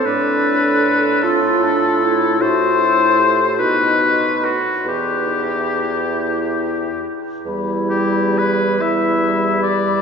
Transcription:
X:1
M:6/8
L:1/8
Q:3/8=48
K:Ddor
V:1 name="Flute"
z6 | [K:Em] z6 | z6 | b3 b3 |]
V:2 name="Oboe"
B3 A3 | [K:Em] c3 B2 F | G4- G z | z G B e2 d |]
V:3 name="Clarinet"
A3 F D E | [K:Em] F A G F2 z | E4- E z | E3 E3 |]
V:4 name="French horn"
D3 F3 | [K:Em] E3 ^D2 z | E4- E z | G,3 G,3 |]
V:5 name="Bassoon" clef=bass
A,,6 | [K:Em] A,,3 B,,2 z | E,,4- E,, z | E,,6 |]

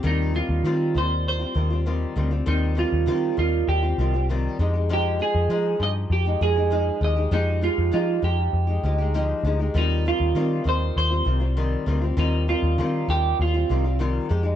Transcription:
X:1
M:4/4
L:1/16
Q:1/4=99
K:Eb
V:1 name="Clean electric guitar"
E2 F4 c2 c4 z4 | E2 F4 F2 G4 z4 | G2 A4 e2 G2 A4 e2 | E2 F2 F2 G8 z2 |
E2 F4 c2 c4 z4 | E2 F4 G2 F4 z4 |]
V:2 name="Nylon-string guitar"
[E,G,CF]2 [E,G,CF]2 [E,G,CF]2 [E,G,CF]3 [G,CF] [E,G,CF] [G,CF] [E,G,CF]2 [E,G,CF] [G,CF] | [E,G,CF]2 [E,G,CF]2 [E,G,CF]2 [E,G,CF]3 [G,CF] [E,G,CF] [G,CF] [E,G,CF]2 [F,A,EG] [A,EG] | [F,A,EG]2 [F,A,E]2 [F,A,E]2 [F,EG]3 [A,EG] [F,A,EG] [A,EG] [F,A,E]2 [F,A,EG] [A,EG] | [F,A,EG]2 [F,A,EG]2 [F,A,EG]2 [F,A,EG]3 [A,EG] [F,A,EG] [A,EG] [F,A,EG]2 [F,A,EG] [A,EG] |
[E,G,CF]2 [E,G,CF]2 [E,G,CF]2 [E,G,CF]3 [G,CF] [E,G,CF] [G,CF] [E,G,CF]2 [E,G,CF] [G,CF] | [E,G,CF]2 [E,G,CF]2 [E,G,CF]2 [E,G,CF]3 [G,CF] [E,G,CF] [G,CF] [E,G,CF]2 [F,A,EG] [A,EG] |]
V:3 name="Picked electric bass" clef=bass
E,,3 E,, E,2 E,,4 E,,4 D,,2 | E,,3 E,, E,2 E,,2 E,,2 C,,4 F,,2- | F,,3 F,, F,2 G,,2 F,,2 F,,4 E,,2 | F,,3 F,, F,2 F,,2 F,,2 D,,4 D,,2 |
E,,3 E,, E,2 E,,2 E,,2 C,,4 D,,2 | E,,3 E,, E,2 E,,2 E,,2 C,,4 F,,2 |]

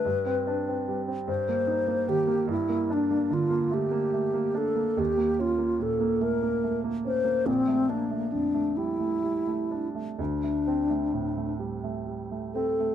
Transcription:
X:1
M:6/8
L:1/16
Q:3/8=48
K:Gdor
V:1 name="Alto flute"
=B4 z2 c4 G2 | E2 D2 F2 G4 A2 | G2 F2 A2 B4 c2 | C2 B,2 D2 E4 z2 |
D6 z4 A2 |]
V:2 name="Grand piano"
G,, C D C G, C G,, B, _E B, _E, B, | G,, B, D B, D, B, A, B, A, B, D B, | _E,, B, ^C B, B,, B, A, B, A, B, C B, | B,,, A, D A, F,, A, G, A, G, A, D A, |
D,, A, C A, A,, A, G, A, G, A, C A, |]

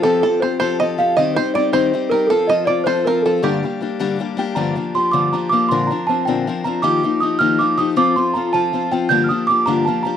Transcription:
X:1
M:6/8
L:1/16
Q:3/8=106
K:Gm
V:1 name="Celesta"
A2 A2 c2 c2 e2 f2 | e2 c2 d2 c4 B2 | A2 e2 d2 c2 B2 A2 | G8- G2 g2 |
b4 c'2 d'2 b2 d'2 | c'2 b2 a2 g4 b2 | d'4 e'2 f'2 d'2 e'2 | d'2 c'2 b2 a4 g2 |
g'3/2 f'/2 e'2 d'2 b2 a2 b2 |]
V:2 name="Five-string banjo"
A2 A2 c2 c2 e4 | e2 c2 d2 c4 B2 | A2 e2 d2 c2 B2 A2 | G8- G2 z2 |
z12 | z12 | z12 | z12 |
z12 |]
V:3 name="Steel-string acoustic guitar"
[F,CGA]2 [F,CGA]2 [F,CGA]2 [F,CGA]2 [F,CGA]2 [F,CGA]2 | [E,G,CEG]2 [G,CEG]2 [G,CEG]2 [E,G,CEG]2 [G,CEG]2 [G,CEG]2 | [F,CFA]2 [F,CFA]2 [F,CFA]2 [F,CFA]2 [F,CFA]2 [F,CFA]2 | [G,,D,G,B,DG]2 [G,B,DG]2 [G,B,DG]2 [G,,D,G,B,DG]2 [G,B,DG]2 [G,B,DG]2 |
[G,,D,F,B,DG]2 [F,B,DG]2 [F,B,DG]2 [G,,D,F,B,DG]2 [F,B,DG]2 [F,B,DG]2 | [B,,D,F,CDB]2 [F,CDB]2 [F,CDB]2 [B,,D,F,CDB]2 [F,CDB]2 [F,CDB]2 | [E,F,B,EG]2 [F,B,EG]2 [F,B,EG]2 [E,F,B,EG]2 [F,B,EG]2 [F,B,EG]2 | [F,CFA]2 [F,CFA]2 [F,CFA]2 [F,CFA]2 [F,CFA]2 [F,CFA]2 |
[G,,D,F,B,DG]2 [F,B,DG]2 [F,B,DG]2 [G,,D,F,B,DG]2 [F,B,DG]2 [F,B,DG]2 |]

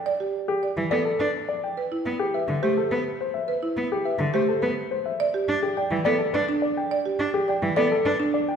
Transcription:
X:1
M:3/4
L:1/16
Q:1/4=105
K:Am
V:1 name="Grand piano"
z3 G z2 d A B z d g | z3 G e z c A B z c e | z3 G e z c A B z c e | z3 G g z d A B z d g |
z3 G g z d A B z d g |]
V:2 name="Marimba"
d G z2 d z A z d z3 | B E z2 B z G z B z3 | B E z2 B z G z B z3 | d G z2 d z A z d D z2 |
d G z2 d z A z d D z2 |]
V:3 name="Cello"
z4 z E, B, z D z3 | z2 B, z2 D, A, z B, z3 | z2 B, z2 D, A, z B, z3 | z2 D z2 E, B, z D z3 |
z2 D z2 E, B, z D z3 |]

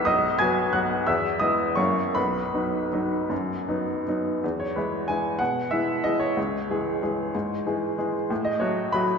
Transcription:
X:1
M:3/4
L:1/8
Q:1/4=182
K:B
V:1 name="Upright piano"
[dd']2 [gg']2 [ff']2 | [ee']2 [dd']2 [cc']2 | [Bb]6- | [Bb]4 z2 |
[K:E] z c B2 g2 | f2 e2 d c- | c6- | c4- c z |
z d c2 b2 |]
V:2 name="Upright piano" clef=bass
B,,,2 [F,B,F]2 [F,B,F]2 | E,,2 [G,B,E]2 [F,,F,A,E]2 | B,,,2 [F,B,D]2 [F,B,D]2 | F,,2 [F,B,D]2 [F,B,D]2 |
[K:E] E,,2 [E,G,E]2 [E,G,E]2 | B,,2 [E,G,E]2 [E,G,E]2 | C,,2 [E,G,G]2 [E,G,G]2 | G,,2 [E,G,G]2 [E,G,G]2 |
A,,2 [F,A,F]2 [F,A,F]2 |]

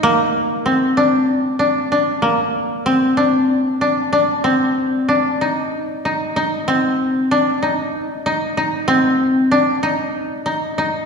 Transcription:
X:1
M:7/8
L:1/8
Q:1/4=95
K:Cm
V:1 name="Koto"
B,2 C D2 D D | B,2 C D2 D D | C2 D E2 E E | C2 D E2 E E |
C2 D E2 E E |]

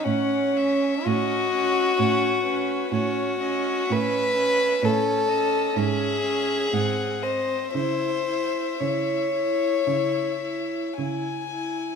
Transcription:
X:1
M:4/4
L:1/8
Q:1/4=61
K:C#m
V:1 name="Violin"
f e d2 c B c d | e2 c d e2 f d | e6 g2 |]
V:2 name="Violin"
C2 F4 F2 | B2 A2 G3 ^B | ^B2 c4 z2 |]
V:3 name="Viola"
C C C C C C C C | C C C C C C ^B, B, | E E E E E E E E |]
V:4 name="Cello" clef=bass
A,,2 A,,2 A,,2 A,,2 | A,,2 A,,2 G,,2 G,,2 | C,2 C,2 C,2 C,2 |]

